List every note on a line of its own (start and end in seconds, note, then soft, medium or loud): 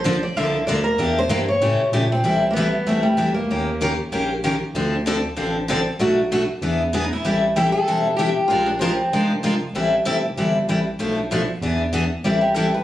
0.00 0.23 C5 medium
0.04 0.21 A1 medium
0.04 0.15 D3 medium
0.04 0.15 F3 medium
0.04 0.15 A#3 medium
0.04 0.16 D4 medium
0.04 0.15 A4 loud
0.23 0.29 A1 soft
0.23 0.37 D5 medium
0.36 0.66 C2 medium
0.36 0.56 D3 medium
0.36 0.56 F3 medium
0.36 0.56 A#3 medium
0.36 0.56 D4 medium
0.36 0.56 A4 medium
0.36 0.66 E5 loud
0.67 0.97 D2 medium
0.67 0.78 D3 medium
0.67 0.78 F3 medium
0.67 0.78 A#3 medium
0.67 0.78 D4 loud
0.67 0.79 A4 medium
0.67 0.72 D5 medium
0.84 1.17 A#4 medium
0.98 1.29 E2 medium
0.98 1.18 E3 medium
0.98 1.18 A#3 medium
0.98 1.18 D4 medium
0.98 1.18 G4 medium
1.19 1.48 C5 medium
1.29 1.60 G2 loud
1.29 1.40 E3 loud
1.29 1.40 A#3 loud
1.29 1.40 D4 medium
1.29 1.41 G4 loud
1.48 1.89 C#5 medium
1.61 1.78 A2 medium
1.61 1.81 C#3 medium
1.61 1.81 E3 medium
1.61 1.81 A3 medium
1.61 1.81 C#4 medium
1.61 1.81 G4 medium
1.79 1.86 A2 soft
1.92 2.22 A#2 medium
1.92 2.03 C#3 medium
1.92 2.03 E3 medium
1.92 2.03 A3 medium
1.92 2.03 C#4 medium
1.92 2.03 G4 medium
2.12 2.50 C4 loud
2.23 2.74 A1 medium
2.23 2.43 E3 medium
2.23 2.43 G3 medium
2.23 2.43 C4 medium
2.23 2.43 E4 medium
2.23 2.44 A4 medium
2.51 2.56 A#3 medium
2.51 2.86 B3 medium
2.56 2.66 E3 medium
2.56 2.66 G3 medium
2.56 2.66 C4 medium
2.56 2.67 E4 loud
2.56 2.67 A4 loud
2.86 3.13 C2 medium
2.86 3.06 E3 medium
2.86 3.06 G3 medium
2.86 3.02 A3 medium
2.86 3.07 C4 medium
2.86 3.07 E4 medium
2.86 3.07 A4 medium
3.03 3.34 G3 medium
3.17 3.44 D2 medium
3.17 3.28 E3 medium
3.17 3.28 G3 medium
3.17 3.28 C4 medium
3.17 3.28 E4 medium
3.17 3.29 A4 medium
3.34 3.94 A#3 medium
3.48 3.98 D#2 medium
3.48 3.69 D#3 medium
3.48 3.69 A#3 medium
3.48 3.69 C#4 medium
3.48 3.69 G4 medium
3.48 3.70 A#4 medium
3.81 3.91 D#3 medium
3.81 3.91 A#3 medium
3.81 3.91 C#4 medium
3.81 3.92 G4 medium
3.81 3.92 A#4 medium
4.11 4.61 A#1 medium
4.11 4.31 D#3 medium
4.11 4.31 A#3 medium
4.11 4.31 C#4 medium
4.11 4.32 G4 medium
4.11 4.32 A#4 medium
4.44 4.54 D#3 medium
4.44 4.54 A#3 medium
4.44 4.54 C#4 medium
4.44 4.54 G4 medium
4.44 4.54 A#4 medium
4.74 5.24 D2 loud
4.74 4.94 D3 medium
4.74 4.94 F3 medium
4.74 4.94 C4 medium
4.74 4.94 D4 medium
4.74 4.94 A4 medium
5.06 5.16 D3 medium
5.06 5.17 F3 medium
5.06 5.17 C4 medium
5.06 5.17 D4 loud
5.06 5.17 A4 loud
5.37 5.87 A1 medium
5.37 5.56 D3 medium
5.37 5.56 F3 medium
5.37 5.56 C4 medium
5.37 5.57 D4 medium
5.37 5.57 A4 medium
5.68 5.79 D3 medium
5.68 5.79 F3 medium
5.68 5.79 C4 medium
5.68 5.79 D4 medium
5.68 5.80 A4 medium
5.99 6.49 B1 medium
5.99 6.19 B2 medium
5.99 6.19 F#3 medium
5.99 6.19 A3 medium
5.99 6.19 D4 medium
5.99 6.20 F#4 medium
6.32 6.42 B2 medium
6.32 6.42 F#3 medium
6.32 6.42 A3 medium
6.32 6.42 D4 loud
6.32 6.42 F#4 medium
6.61 7.12 E2 loud
6.61 6.81 E3 medium
6.61 6.82 B3 medium
6.61 6.82 D4 medium
6.61 6.82 G#4 medium
6.93 7.04 E3 medium
6.93 7.04 B3 medium
6.93 7.04 D4 medium
6.93 7.04 G#4 medium
7.04 7.12 D#4 medium
7.13 7.41 E4 medium
7.24 7.74 A1 loud
7.24 7.44 E3 medium
7.24 7.44 G3 medium
7.24 7.44 C4 medium
7.24 7.44 E4 medium
7.24 7.45 A4 medium
7.56 7.66 E3 medium
7.56 7.66 G3 medium
7.56 7.67 C4 medium
7.56 7.67 E4 medium
7.56 7.72 G4 loud
7.56 7.67 A4 medium
7.72 8.16 A4 loud
7.86 8.36 E1 medium
7.86 8.06 E3 medium
7.86 8.07 G3 medium
7.86 8.07 C4 medium
7.86 8.07 E4 medium
7.86 8.07 A4 medium
8.17 8.29 E3 medium
8.17 8.29 G3 medium
8.17 8.29 C4 medium
8.17 8.29 E4 medium
8.17 8.46 G4 medium
8.17 8.29 A4 medium
8.48 8.99 A#1 medium
8.48 8.69 F3 medium
8.48 8.69 G#3 medium
8.48 8.69 D4 medium
8.48 8.65 F4 medium
8.48 8.69 F4 medium
8.48 8.69 A#4 medium
8.66 8.71 D4 medium
8.79 8.91 F3 medium
8.79 8.91 G#3 medium
8.79 9.38 C4 medium
8.79 8.91 D4 medium
8.79 8.91 F4 medium
8.79 8.92 A#4 medium
9.11 9.61 F1 medium
9.11 9.32 F3 medium
9.11 9.32 G#3 medium
9.11 9.32 D4 medium
9.11 9.32 F4 medium
9.11 9.32 A#4 medium
9.43 9.53 F3 medium
9.43 9.54 G#3 medium
9.43 9.54 D4 medium
9.43 9.54 F4 medium
9.43 9.54 A#4 medium
9.73 9.98 A1 medium
9.73 9.94 E3 medium
9.73 9.94 G3 medium
9.73 9.94 C4 medium
9.73 9.94 E4 medium
9.73 9.94 A4 medium
10.04 10.31 F1 medium
10.04 10.16 E3 medium
10.04 10.16 G3 medium
10.04 10.16 C4 loud
10.04 10.16 E4 loud
10.04 10.16 A4 loud
10.36 10.63 G1 medium
10.36 10.56 E3 medium
10.36 10.56 G3 medium
10.36 10.57 C4 medium
10.36 10.56 E4 medium
10.36 10.57 A4 medium
10.67 10.94 A1 medium
10.67 10.79 E3 medium
10.67 10.79 G3 medium
10.67 10.79 C4 medium
10.67 10.79 E4 medium
10.67 10.79 A4 medium
10.99 11.48 B1 medium
10.99 11.18 B2 medium
10.99 11.19 F3 medium
10.99 11.18 A3 medium
10.99 11.19 D4 medium
10.99 11.19 A4 medium
11.31 11.41 B2 medium
11.31 11.41 F3 medium
11.31 11.41 A3 medium
11.31 11.41 D4 medium
11.31 11.41 A4 medium
11.61 12.11 E2 medium
11.61 11.81 E3 medium
11.61 11.81 B3 medium
11.61 11.81 D4 medium
11.61 11.82 G#4 medium
11.93 12.03 E3 medium
11.93 12.03 B3 medium
11.93 12.03 D4 medium
11.93 12.03 G#4 medium
12.24 12.73 A1 loud
12.24 12.43 E3 medium
12.24 12.43 G3 medium
12.24 12.43 C4 medium
12.24 12.44 E4 medium
12.24 12.44 A4 medium
12.41 12.54 G4 medium
12.54 12.66 E3 medium
12.54 12.66 G3 medium
12.54 12.66 C4 medium
12.54 12.66 E4 medium
12.54 12.72 A4 medium
12.54 12.66 A4 loud
12.74 12.84 B4 medium